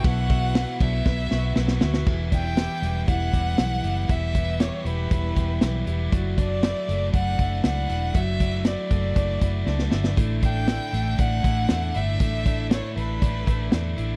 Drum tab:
CC |----------------|x---------------|----------------|----------------|
RD |x-x-x-x---------|----------------|----------------|----------------|
HH |----------------|--x-x-x-x-x-x-x-|x-x-x-x-x-x-x-x-|x-x-x-x-x-x-x-x-|
SD |----o---o-o-oooo|----o-------o---|----o-------o---|----o-------o---|
BD |o-o---o-o-------|o-o-----o-o-----|o-o-----o-o-----|o-o-----o-o-----|

CC |----------------|----------------|----------------|
RD |----------------|----------------|----------------|
HH |x-x-x-x-x-x-----|x-x-x-x-x-x-x-x-|x-x-x-x-x-x-x-x-|
SD |----o-------oooo|----o-------o---|----o-------o---|
BD |o-o---o-o-o-----|o-o-----o-o-----|o-o-----o-o-----|